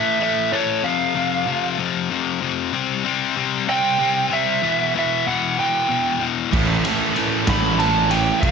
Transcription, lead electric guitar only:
0.00 0.21 E5 medium
0.23 0.54 E5 loud
0.52 0.85 C#5 medium
0.84 1.75 F5 medium
3.70 4.33 G5 loud
4.33 4.91 E5 loud
4.99 5.26 E5 medium
5.28 5.59 F#5 medium
5.60 6.26 G5 medium
7.50 7.79 B5 loud
7.79 8.11 A5 loud
8.11 8.41 G5 loud
8.41 8.51 F5 medium

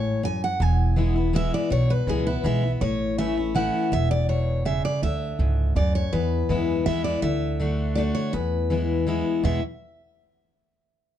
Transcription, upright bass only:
0.00 0.37 A1 medium
0.60 1.48 E1 medium
1.71 2.00 B1 medium
2.07 2.39 C#2 medium
2.44 2.75 B1 medium
2.81 3.69 A1 loud
3.92 4.79 E1 medium
5.02 5.31 D2 medium
5.39 5.70 C#2 medium
5.75 6.07 D2 medium
6.12 6.42 E2 medium
6.49 6.81 F#2 medium
6.86 7.17 E2 medium
7.22 8.10 D2 medium
8.33 9.21 E2 medium
9.44 9.62 E2 medium

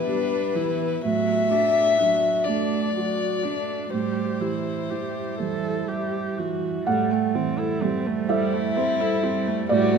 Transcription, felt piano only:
0.00 1.00 A2 medium
0.00 0.36 B3 soft
0.00 0.56 E4 soft
0.00 0.08 G4 soft
0.08 0.85 G4 soft
0.56 1.04 E4 soft
1.05 3.89 A2 medium
1.52 2.28 F#4 medium
2.00 2.77 D4 soft
2.48 3.25 A3 soft
2.97 3.74 F#4 soft
3.45 3.93 D4 soft
3.93 6.83 A2 soft
4.41 5.20 G4 soft
4.92 5.69 E4 soft
5.40 6.18 G3 soft
5.89 6.67 G4 soft
6.40 6.87 E4 soft
6.87 9.67 A2 medium
6.87 8.25 F#5 medium
7.35 8.10 E3 medium
7.82 8.57 G3 medium
8.29 9.05 E4 medium
8.29 9.66 E5 medium
8.77 9.52 C5 medium
9.23 9.70 E4 medium
9.69 9.98 A2 medium
9.69 9.98 D5 loud

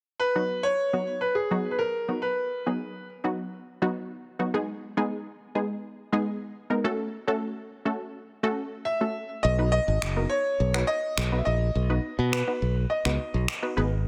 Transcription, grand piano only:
0.20 0.65 B4 loud
0.63 1.18 C#5 loud
1.21 1.35 B4 medium
1.35 1.73 G#4 medium
1.71 1.79 B4 medium
1.79 2.24 A#4 medium
2.22 3.05 B4 medium
8.85 9.45 E5 loud
9.43 9.70 D#5 loud
9.72 10.32 D#5 loud
10.29 10.90 C#5 loud
10.87 11.35 D#5 loud
11.38 11.46 E5 medium
11.45 12.35 D#5 loud
12.32 12.92 B4 medium
12.90 13.73 D#5 medium

